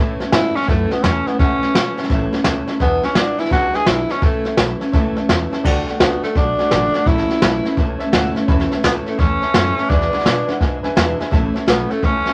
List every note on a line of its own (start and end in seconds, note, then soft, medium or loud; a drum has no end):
0.00 0.19 A2 medium
0.00 0.20 A2 medium
0.00 0.21 E3 medium
0.00 0.21 A3 loud
0.00 0.22 C#4 medium
0.00 0.20 E4 loud
0.00 0.11 C#5 loud
0.00 0.11 E5 loud
0.00 0.11 A5 loud
0.19 0.34 C#4 medium
0.19 0.33 E4 medium
0.19 0.28 C#5 medium
0.19 0.28 E5 medium
0.19 0.28 A5 loud
0.19 muted upright bass stroke medium
0.19 snare soft
0.24 0.34 A3 medium
0.32 0.55 G#2 loud
0.32 0.57 A3 medium
0.32 0.57 C#4 medium
0.32 0.58 E4 loud
0.32 0.46 C#5 medium
0.32 0.47 A5 medium
0.32 snare loud
0.32 hi-hat pedal medium
0.37 0.54 E4 medium
0.55 0.69 A3 soft
0.55 0.70 C#4 loud
0.55 0.69 C#4 medium
0.55 0.68 E4 soft
0.55 0.63 C#5 medium
0.55 0.63 E5 medium
0.55 0.64 A5 medium
0.55 muted upright bass stroke medium
0.55 snare soft
0.62 snare soft
0.67 0.90 F#2 medium
0.67 0.91 A2 medium
0.67 0.92 E3 medium
0.67 0.94 A3 medium
0.67 0.92 A3 medium
0.67 0.92 C#4 medium
0.67 0.90 E4 medium
0.67 0.81 C#5 medium
0.67 0.82 E5 medium
0.67 0.82 A5 loud
0.67 kick loud
0.67 snare soft
0.90 1.04 B3 medium
0.90 1.05 C#4 soft
0.90 1.04 E4 medium
0.90 0.98 C#5 medium
0.90 0.99 E5 medium
0.90 0.99 A5 medium
0.90 muted upright bass stroke medium
0.90 snare soft
0.95 1.03 A3 soft
1.03 1.26 E2 loud
1.03 1.26 E3 medium
1.03 1.27 A3 medium
1.03 1.29 C#4 medium
1.03 1.27 C#4 medium
1.03 1.25 E4 medium
1.03 1.17 C#5 medium
1.03 1.18 E5 medium
1.03 1.18 A5 medium
1.03 snare loud
1.03 hi-hat pedal medium
1.26 1.39 A3 soft
1.26 1.39 B3 medium
1.26 1.40 C#4 soft
1.26 1.39 E4 medium
1.26 1.34 C#5 medium
1.26 1.34 E5 medium
1.26 1.35 G#5 medium
1.26 snare soft
1.38 1.62 C#2 medium
1.38 1.62 A2 medium
1.38 1.62 E3 medium
1.38 1.63 A3 medium
1.38 2.06 C#4 medium
1.38 1.62 C#4 medium
1.38 1.61 E4 medium
1.38 1.53 C#5 medium
1.38 1.53 E5 medium
1.38 1.53 F#5 loud
1.38 kick loud
1.38 snare soft
1.61 1.74 A3 soft
1.61 1.75 C#4 medium
1.61 1.75 E4 medium
1.61 1.69 C#5 medium
1.61 muted upright bass stroke medium
1.61 snare soft
1.74 1.96 B1 medium
1.74 1.97 E3 medium
1.74 1.98 A3 medium
1.74 1.96 E4 medium
1.74 1.88 C#5 medium
1.74 1.89 A5 medium
1.74 snare loud
1.74 hi-hat pedal medium
1.97 2.10 A3 soft
1.97 2.10 C#4 medium
1.97 2.10 E4 medium
1.97 2.05 C#5 medium
1.97 2.05 E5 medium
1.97 2.06 A5 loud
1.97 muted upright bass stroke soft
1.97 snare soft
2.04 snare soft
2.10 2.32 A1 medium
2.10 2.33 A2 medium
2.10 2.33 E3 loud
2.10 2.33 A3 medium
2.10 2.33 C#4 loud
2.10 2.31 E4 loud
2.10 2.24 C#5 loud
2.10 2.24 E5 loud
2.10 2.25 A5 loud
2.10 kick loud
2.10 snare soft
2.32 2.45 A3 medium
2.32 2.46 C#4 medium
2.32 2.45 E4 medium
2.32 2.41 C#5 medium
2.32 2.41 E5 medium
2.32 2.41 A5 medium
2.32 snare soft
2.44 2.68 C#2 medium
2.44 2.68 E3 medium
2.44 2.69 A3 medium
2.44 2.68 C#4 medium
2.44 2.66 E4 medium
2.44 2.59 C#5 medium
2.44 2.60 E5 medium
2.44 2.60 A5 loud
2.44 snare loud
2.44 hi-hat pedal medium
2.67 2.81 C#4 medium
2.67 2.81 E4 medium
2.67 2.75 C#5 medium
2.67 2.76 E5 medium
2.67 2.76 A5 medium
2.67 snare soft
2.71 2.80 A3 medium
2.79 3.03 E2 medium
2.79 3.04 B2 medium
2.79 3.04 E3 medium
2.79 3.04 G#3 medium
2.79 3.06 B3 loud
2.79 3.03 D4 medium
2.79 3.02 E4 medium
2.79 2.94 B4 medium
2.79 2.95 E5 medium
2.79 2.95 G#5 loud
2.79 kick loud
2.79 snare soft
3.02 3.14 E3 soft
3.02 3.15 G#3 medium
3.02 3.19 C#4 medium
3.02 3.16 D4 medium
3.02 3.16 E4 medium
3.02 3.11 B4 medium
3.02 3.11 E5 medium
3.02 3.12 G#5 medium
3.02 snare soft
3.15 3.38 D2 loud
3.15 3.39 E3 medium
3.15 3.39 G#3 medium
3.15 3.41 D4 medium
3.15 3.37 D4 medium
3.15 3.36 E4 medium
3.15 3.30 B4 medium
3.15 3.30 E5 medium
3.15 3.31 F#5 medium
3.15 snare loud
3.15 hi-hat pedal medium
3.37 3.50 E3 soft
3.37 3.51 G#3 soft
3.37 3.51 D4 soft
3.37 3.51 E4 medium
3.37 3.52 E4 loud
3.37 3.47 B4 medium
3.37 3.47 E5 medium
3.37 3.47 G#5 medium
3.37 muted upright bass stroke soft
3.37 snare soft
3.45 snare soft
3.50 3.74 C#2 medium
3.50 3.74 E2 medium
3.50 3.74 B2 medium
3.50 3.74 E3 medium
3.50 3.74 G#3 medium
3.50 3.73 D4 medium
3.50 3.72 E4 medium
3.50 3.77 F#4 loud
3.50 3.65 B4 medium
3.50 3.65 E5 medium
3.50 3.66 G#5 loud
3.50 kick loud
3.50 snare soft
3.73 3.85 E3 soft
3.73 3.86 G#3 soft
3.73 3.87 D4 soft
3.73 3.87 E4 medium
3.73 3.90 G#4 loud
3.73 3.82 B4 medium
3.73 3.82 E5 medium
3.73 3.82 G#5 medium
3.73 snare soft
3.86 4.10 B1 medium
3.86 4.10 E3 medium
3.86 4.10 G#3 medium
3.86 4.08 D4 medium
3.86 4.13 E4 medium
3.86 4.07 E4 medium
3.86 4.01 G#5 medium
3.86 snare loud
3.86 hi-hat pedal medium
4.08 4.21 E3 soft
4.08 4.22 G#3 soft
4.08 4.26 C#4 medium
4.08 4.23 D4 soft
4.08 4.22 E4 medium
4.08 4.17 B4 medium
4.08 4.18 E5 medium
4.08 4.18 G#5 medium
4.08 snare soft
4.21 4.45 A2 medium
4.21 4.46 E3 medium
4.21 4.46 A3 medium
4.21 4.59 A3 medium
4.21 4.44 C#4 medium
4.21 4.43 E4 medium
4.21 4.36 C#5 loud
4.21 4.36 E5 medium
4.21 4.37 A5 loud
4.21 kick loud
4.21 snare soft
4.44 4.58 A3 soft
4.44 4.58 C#4 soft
4.44 4.58 E4 medium
4.44 4.53 C#5 medium
4.44 4.53 E5 medium
4.44 4.54 A5 medium
4.44 snare soft
4.57 4.80 B1 loud
4.57 4.81 E3 medium
4.57 4.82 A3 medium
4.57 4.81 C#4 medium
4.57 4.79 E4 medium
4.57 4.72 C#5 medium
4.57 4.72 E5 medium
4.57 4.72 B5 medium
4.57 snare loud
4.57 hi-hat pedal medium
4.80 4.94 A3 soft
4.80 4.94 C#4 medium
4.80 4.94 E4 medium
4.80 4.88 C#5 medium
4.80 4.88 E5 medium
4.80 4.89 A5 medium
4.80 snare soft
4.92 5.15 C#2 medium
4.92 5.16 A2 medium
4.92 5.17 E3 medium
4.92 5.17 A3 loud
4.92 5.17 C#4 loud
4.92 5.15 E4 medium
4.92 5.07 C#5 loud
4.92 5.07 E5 loud
4.92 5.07 A5 loud
4.92 kick loud
4.92 snare soft
5.15 5.28 A3 medium
5.15 5.29 C#4 medium
5.15 5.29 E4 medium
5.15 5.24 C#5 medium
5.15 5.24 E5 medium
5.15 5.25 A5 loud
5.15 snare soft
5.29 5.51 E2 medium
5.29 5.52 E3 medium
5.29 5.52 A3 medium
5.29 5.51 C#4 medium
5.29 5.49 E4 medium
5.29 5.43 C#5 medium
5.29 5.43 E5 medium
5.29 5.43 A5 medium
5.29 snare loud
5.29 hi-hat pedal medium
5.50 5.64 A3 medium
5.50 5.65 C#4 medium
5.50 5.64 E4 medium
5.50 5.59 C#5 medium
5.50 5.60 E5 medium
5.50 5.60 A5 loud
5.50 snare soft
5.64 5.87 D2 medium
5.64 5.87 D3 medium
5.64 5.88 A3 medium
5.64 5.88 D4 loud
5.64 5.86 F#4 loud
5.64 5.78 D5 loud
5.64 5.78 F#5 loud
5.64 5.79 A5 loud
5.64 kick loud
5.64 snare soft
5.64 crash loud
5.86 6.01 D4 medium
5.86 6.00 F#4 medium
5.86 5.94 D5 medium
5.86 5.95 F#5 medium
5.86 5.95 A5 loud
5.86 muted upright bass stroke medium
5.86 snare soft
5.90 6.01 A3 medium
5.98 6.22 C#2 loud
5.98 6.23 D3 medium
5.98 6.24 A3 medium
5.98 6.21 B3 medium
5.98 6.13 D5 medium
5.98 6.13 F#5 medium
5.98 snare loud
5.98 hi-hat pedal medium
6.03 6.24 D4 medium
6.03 6.22 F#4 medium
6.22 6.39 A3 medium
6.22 6.36 D4 soft
6.22 6.36 F#4 medium
6.22 6.30 D5 medium
6.22 6.30 F#5 medium
6.22 6.31 A5 medium
6.22 snare soft
6.27 6.36 A3 soft
6.35 6.58 B1 medium
6.35 6.58 D3 medium
6.35 6.59 A3 medium
6.35 7.09 D4 loud
6.35 6.59 D4 medium
6.35 6.49 D5 medium
6.35 6.49 F#5 medium
6.35 6.50 A5 medium
6.35 kick loud
6.35 snare soft
6.39 6.57 F#4 medium
6.58 6.70 A3 soft
6.58 6.71 D4 medium
6.58 6.71 F#4 medium
6.58 6.66 D5 medium
6.58 6.66 F#5 medium
6.58 6.67 A5 loud
6.58 muted upright bass stroke medium
6.58 snare soft
6.70 6.94 A1 loud
6.70 6.94 D3 medium
6.70 6.94 A3 medium
6.70 6.95 D4 medium
6.70 6.93 F#4 medium
6.70 6.84 D5 loud
6.70 6.85 F#5 medium
6.70 6.85 A5 loud
6.70 snare loud
6.70 hi-hat pedal medium
6.93 7.08 D4 medium
6.93 7.07 F#4 medium
6.93 7.01 D5 medium
6.93 7.02 F#5 medium
6.93 7.02 A5 medium
6.93 muted upright bass stroke medium
6.93 snare soft
6.97 7.07 A3 soft
7.06 7.29 A1 medium
7.06 7.30 A2 medium
7.06 7.30 E3 medium
7.06 7.30 A3 medium
7.06 7.29 C#4 medium
7.06 7.78 E4 loud
7.06 7.27 E4 medium
7.06 7.20 C#5 loud
7.06 7.20 E5 medium
7.06 7.21 A5 loud
7.06 kick loud
7.06 snare soft
7.18 snare soft
7.28 7.41 A3 soft
7.28 7.42 C#4 soft
7.28 7.42 E4 medium
7.28 7.37 C#5 medium
7.28 7.37 E5 medium
7.28 7.37 A5 medium
7.28 snare soft
7.41 7.65 B1 loud
7.41 7.65 A2 medium
7.41 7.65 E3 medium
7.41 7.65 A3 medium
7.41 7.64 C#4 medium
7.41 7.62 E4 medium
7.41 7.55 C#5 medium
7.41 7.56 B5 medium
7.41 snare loud
7.41 hi-hat pedal medium
7.63 7.77 A3 soft
7.63 7.78 C#4 soft
7.63 7.77 E4 medium
7.63 7.72 C#5 medium
7.63 7.72 E5 medium
7.63 7.73 A5 medium
7.63 snare soft
7.76 7.99 C#2 medium
7.76 8.00 E3 medium
7.76 8.01 A3 medium
7.76 8.01 C#4 medium
7.76 7.99 E4 medium
7.76 7.91 C#5 medium
7.76 7.91 E5 medium
7.76 7.92 A5 medium
7.76 kick loud
7.76 snare soft
7.99 8.13 C#4 medium
7.99 8.13 E4 medium
7.99 8.07 C#5 loud
7.99 8.08 E5 loud
7.99 8.08 A5 loud
7.99 snare soft
8.04 8.13 A3 medium
8.12 8.35 D2 medium
8.12 8.35 A2 medium
8.12 8.36 E3 medium
8.12 8.37 A3 medium
8.12 8.36 C#4 loud
8.12 8.34 E4 loud
8.12 8.26 C#5 loud
8.12 8.27 E5 loud
8.12 8.27 F#5 loud
8.12 snare loud
8.12 hi-hat pedal medium
8.34 8.48 C#4 medium
8.34 8.48 E4 medium
8.34 8.43 C#5 medium
8.34 8.43 E5 medium
8.34 8.44 A5 loud
8.34 muted upright bass stroke medium
8.34 snare soft
8.38 8.48 A3 soft
8.47 8.71 E2 medium
8.47 8.71 A2 medium
8.47 8.71 E3 loud
8.47 8.72 A3 medium
8.47 8.72 C#4 loud
8.47 8.70 E4 loud
8.47 8.61 C#5 loud
8.47 8.62 E5 loud
8.47 8.62 B5 loud
8.47 kick loud
8.47 snare soft
8.60 snare soft
8.70 8.83 A3 medium
8.70 8.84 C#4 medium
8.70 8.84 E4 medium
8.70 8.79 C#5 medium
8.70 8.79 E5 medium
8.70 8.79 A5 loud
8.70 muted upright bass stroke medium
8.70 snare soft
8.83 9.06 C#2 loud
8.83 9.06 A2 medium
8.83 9.06 E3 medium
8.83 9.07 A3 loud
8.83 8.95 B3 medium
8.83 9.07 C#4 medium
8.83 9.05 E4 loud
8.83 8.97 C#5 medium
8.83 8.98 E5 medium
8.83 8.98 A5 medium
8.83 snare loud
8.83 hi-hat pedal medium
9.06 9.20 A3 medium
9.06 9.18 A3 soft
9.06 9.19 C#4 soft
9.06 9.19 E4 medium
9.06 9.14 C#5 medium
9.06 9.14 E5 medium
9.06 9.15 A5 medium
9.06 muted upright bass stroke medium
9.06 snare soft
9.18 9.41 E2 medium
9.18 9.42 E3 medium
9.18 9.42 A3 medium
9.18 9.92 C#4 loud
9.18 9.43 C#4 medium
9.18 9.41 E4 medium
9.18 9.33 C#5 medium
9.18 9.33 E5 medium
9.18 9.33 A5 medium
9.18 kick loud
9.18 snare soft
9.41 9.54 A3 soft
9.41 9.55 C#4 soft
9.41 9.55 E4 medium
9.41 9.49 C#5 loud
9.41 9.50 E5 medium
9.41 9.50 A5 loud
9.41 snare soft
9.54 9.77 F#2 loud
9.54 9.78 A2 medium
9.54 9.78 E3 medium
9.54 9.78 A3 medium
9.54 9.77 C#4 medium
9.54 9.76 E4 medium
9.54 9.68 C#5 medium
9.54 9.68 E5 medium
9.54 9.69 A5 loud
9.54 snare loud
9.54 hi-hat pedal medium
9.77 9.89 A3 soft
9.77 9.90 C#4 medium
9.77 9.90 E4 medium
9.77 9.85 C#5 medium
9.77 9.85 E5 medium
9.77 9.86 A5 loud
9.77 snare soft
9.89 10.12 E2 medium
9.89 10.12 B2 medium
9.89 10.13 E3 medium
9.89 10.12 G#3 medium
9.89 10.61 D4 loud
9.89 10.12 D4 medium
9.89 10.10 E4 medium
9.89 10.03 B4 medium
9.89 10.04 E5 medium
9.89 10.04 G#5 loud
9.89 kick loud
9.89 snare soft
10.01 snare soft
10.12 10.24 E3 soft
10.12 10.24 G#3 medium
10.12 10.25 D4 medium
10.12 10.25 E4 medium
10.12 10.20 B4 medium
10.12 10.21 E5 medium
10.12 10.21 F#5 medium
10.12 muted upright bass stroke medium
10.12 snare soft
10.19 snare soft
10.24 10.48 E2 medium
10.24 10.48 B2 medium
10.24 10.48 B2 loud
10.24 10.48 E3 medium
10.24 10.49 G#3 medium
10.24 10.47 D4 medium
10.24 10.46 E4 medium
10.24 10.39 B4 medium
10.24 10.40 G#5 medium
10.24 snare loud
10.24 hi-hat pedal medium
10.47 10.59 E3 soft
10.47 10.61 G#3 medium
10.47 10.61 D4 medium
10.47 10.61 E4 medium
10.47 10.55 B4 medium
10.47 10.56 E5 medium
10.47 10.56 F#5 medium
10.47 muted upright bass stroke medium
10.47 snare soft
10.59 10.83 G#2 medium
10.59 10.84 E3 medium
10.59 10.85 G#3 medium
10.59 10.84 D4 medium
10.59 10.74 B4 medium
10.59 10.75 E5 medium
10.59 10.75 G#5 medium
10.59 kick loud
10.59 snare soft
10.64 10.83 E4 medium
10.83 10.95 E3 soft
10.83 10.96 G#3 soft
10.83 10.96 D4 medium
10.83 10.97 E4 medium
10.83 10.91 B4 loud
10.83 10.92 E5 loud
10.83 10.92 G#5 loud
10.83 muted upright bass stroke medium
10.83 snare soft
10.96 11.19 E2 medium
10.96 11.19 E2 loud
10.96 11.19 B2 medium
10.96 11.20 E3 medium
10.96 11.19 G#3 loud
10.96 11.18 D4 loud
10.96 11.17 E4 medium
10.96 11.10 B4 loud
10.96 11.11 E5 loud
10.96 11.11 G#5 loud
10.96 snare loud
10.96 hi-hat pedal medium
11.18 11.31 E3 soft
11.18 11.32 G#3 medium
11.18 11.32 D4 medium
11.18 11.31 E4 medium
11.18 11.27 B4 medium
11.18 11.27 E5 medium
11.18 11.28 G#5 loud
11.18 muted upright bass stroke medium
11.18 snare soft
11.31 11.54 A1 medium
11.31 11.55 A2 medium
11.31 11.55 E3 medium
11.31 11.55 A3 medium
11.31 11.54 C#4 loud
11.31 11.52 E4 loud
11.31 11.45 C#5 loud
11.31 11.46 E5 loud
11.31 11.46 A5 loud
11.31 kick loud
11.31 snare soft
11.53 11.66 A3 medium
11.53 11.67 C#4 medium
11.53 11.67 E4 medium
11.53 11.62 C#5 medium
11.53 11.63 E5 medium
11.53 11.63 A5 loud
11.53 snare soft
11.66 11.90 B1 medium
11.66 11.90 A2 medium
11.66 11.90 E3 medium
11.66 11.90 A3 medium
11.66 11.93 B3 medium
11.66 11.90 C#4 medium
11.66 11.88 E4 medium
11.66 11.81 C#5 medium
11.66 11.82 E5 medium
11.66 11.82 A5 medium
11.66 snare loud
11.66 hi-hat pedal medium
11.89 12.06 A3 medium
11.89 12.02 A3 soft
11.89 12.03 C#4 soft
11.89 12.03 E4 medium
11.89 11.98 C#5 medium
11.89 11.98 E5 medium
11.89 11.99 A5 medium
11.89 snare soft
12.02 12.25 C#2 medium
12.02 12.26 E3 medium
12.02 12.26 A3 medium
12.02 12.25 C#4 medium
12.02 12.33 C#4 loud
12.02 12.23 E4 medium
12.02 12.17 C#5 medium
12.02 12.17 E5 medium
12.02 12.18 A5 medium
12.02 kick loud
12.02 snare soft
12.25 12.33 A3 soft
12.25 12.33 C#4 medium
12.25 12.33 E4 medium
12.25 12.33 C#5 medium
12.25 12.33 E5 medium
12.25 12.33 A5 loud
12.25 muted upright bass stroke medium
12.25 snare soft